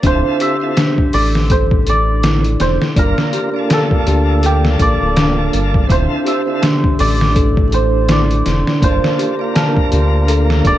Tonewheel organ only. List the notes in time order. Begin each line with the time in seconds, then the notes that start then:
0.02 C4 E4 F4 A4
0.60 C4 E4 F4 A4
2.95 A#3 D4 F4 A#4
3.52 A#3 D4
3.56 F4 A4
5.87 C4 E4 F4 A4
6.46 C4 E4 F4 A4
8.80 A#3 D4 F4
8.84 A4
9.37 A#3 D4
9.41 F4 A#4